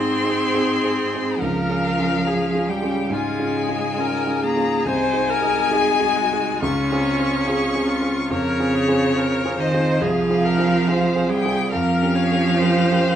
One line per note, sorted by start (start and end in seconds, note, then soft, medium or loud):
0.00 1.43 G#2 medium
0.00 0.21 C4 soft
0.00 1.40 C4 medium
0.00 0.21 D#4 soft
0.00 0.21 G#4 soft
0.00 1.41 G#4 medium
0.00 1.42 C6 medium
0.24 0.50 C4 soft
0.24 0.51 D#4 soft
0.24 0.51 G#4 soft
0.54 0.80 C4 soft
0.54 0.80 D#4 soft
0.54 0.80 G#4 soft
0.84 1.10 C4 soft
0.84 1.09 D#4 soft
0.84 1.10 G#4 soft
1.14 1.39 C4 soft
1.14 1.39 D#4 soft
1.14 1.39 G#4 soft
1.41 1.69 C#2 medium
1.41 2.70 F3 medium
1.41 2.28 A#4 medium
1.41 2.70 F5 medium
1.69 1.95 C#4 soft
1.69 1.95 F4 soft
1.69 1.95 G#4 soft
1.98 2.24 C#4 soft
1.98 2.24 F4 soft
1.98 2.24 G#4 soft
2.25 2.51 C#4 soft
2.25 2.52 F4 soft
2.25 2.52 G#4 medium
2.25 2.72 G#4 medium
2.54 2.80 C#4 soft
2.54 2.81 F4 soft
2.54 2.81 G#4 soft
2.69 3.15 G3 medium
2.69 3.15 G4 medium
2.69 3.12 G5 medium
2.83 3.09 C#4 soft
2.83 3.09 F4 soft
2.83 3.09 G#4 soft
3.10 3.39 G#2 medium
3.10 4.45 G#3 medium
3.10 4.45 G#5 medium
3.14 3.58 F4 medium
3.39 3.66 C#4 soft
3.39 3.66 F4 soft
3.39 3.66 G#4 soft
3.57 4.02 G#4 medium
3.68 3.95 C#4 soft
3.68 3.95 F4 soft
3.68 3.96 G#4 soft
3.98 4.25 C#4 soft
3.98 4.25 F4 soft
3.98 4.25 G#4 medium
3.98 4.43 A#4 medium
4.26 4.53 C#4 soft
4.26 4.53 F4 soft
4.26 4.54 G#4 medium
4.43 4.86 A#3 medium
4.43 4.88 G#4 medium
4.43 4.86 A#5 medium
4.56 4.82 C#4 soft
4.56 4.82 F4 soft
4.56 4.83 G#4 medium
4.85 5.13 C2 medium
4.85 6.64 G#3 medium
4.85 5.31 C5 medium
4.85 6.58 G#5 loud
5.12 5.39 D#4 soft
5.12 5.39 F#4 soft
5.12 5.39 G#4 soft
5.30 5.74 A#4 medium
5.42 5.68 D#4 soft
5.42 5.68 F#4 soft
5.42 5.68 G#4 medium
5.70 5.97 D#4 medium
5.70 5.97 F#4 soft
5.70 5.98 G#4 soft
5.70 6.17 G#4 medium
6.00 6.28 D#4 medium
6.00 6.28 F#4 medium
6.00 6.28 G#4 medium
6.16 6.61 F#4 medium
6.32 6.59 D#4 soft
6.32 6.59 F#4 soft
6.32 6.59 G#4 medium
6.60 6.90 C#2 medium
6.60 8.33 C#4 medium
6.60 7.48 F4 medium
6.60 8.28 C#6 medium
6.91 7.16 C4 soft
6.91 7.17 F4 soft
6.91 7.17 G#4 medium
7.19 7.44 C4 soft
7.19 7.44 F4 medium
7.19 7.44 G#4 medium
7.46 7.72 C4 medium
7.46 7.72 F4 medium
7.46 7.89 G#4 medium
7.46 7.72 G#4 medium
7.74 8.00 C4 medium
7.74 8.00 F4 soft
7.74 8.00 G#4 medium
7.87 8.32 F4 medium
8.02 8.28 C4 medium
8.02 8.28 F4 soft
8.02 8.28 G#4 medium
8.30 8.58 F2 medium
8.30 9.58 C#3 medium
8.30 8.76 A#4 medium
8.30 9.62 C#5 loud
8.59 8.85 C4 soft
8.59 8.85 F4 soft
8.59 8.86 G#4 medium
8.75 9.19 G#4 medium
8.88 9.13 C4 medium
8.88 9.14 F4 medium
8.88 9.14 G#4 medium
9.15 9.41 C4 soft
9.15 9.41 F4 medium
9.15 9.42 G#4 medium
9.15 9.59 A#4 medium
9.45 9.70 C4 medium
9.45 9.70 F4 medium
9.45 9.70 G#4 medium
9.58 10.01 D#3 medium
9.58 10.03 C5 medium
9.58 10.03 D#5 medium
9.73 9.98 C4 soft
9.73 9.98 F4 medium
9.73 9.98 G#4 medium
10.00 10.28 C2 medium
10.00 11.30 F3 medium
10.00 10.46 G#4 medium
10.00 11.31 F5 medium
10.29 10.55 C4 medium
10.29 10.55 F4 soft
10.29 10.56 G#4 medium
10.45 10.89 A#4 medium
10.58 10.84 C4 medium
10.58 10.84 F4 soft
10.58 10.84 G#4 medium
10.87 11.13 C4 soft
10.87 11.13 F4 medium
10.87 11.13 G#4 medium
10.87 11.31 C5 medium
11.15 11.41 C4 soft
11.15 11.41 F4 soft
11.15 11.41 G#4 medium
11.28 11.75 G3 medium
11.28 11.72 G#4 medium
11.28 11.70 G5 medium
11.45 11.70 C4 medium
11.45 11.70 F4 soft
11.45 11.70 G#4 medium
11.71 12.00 F2 medium
11.71 13.15 F3 medium
11.71 12.17 A#4 medium
11.71 13.15 F5 loud
12.02 12.27 C#4 soft
12.02 12.27 G4 medium
12.02 12.27 A#4 soft
12.15 12.59 C#5 medium
12.30 12.56 C#4 soft
12.30 12.56 G4 medium
12.30 12.57 A#4 medium
12.58 12.87 C#4 medium
12.58 12.87 G4 soft
12.58 12.88 A#4 medium
12.58 13.15 C5 medium
12.91 13.15 C#4 medium
12.91 13.15 G4 medium
12.91 13.15 A#4 medium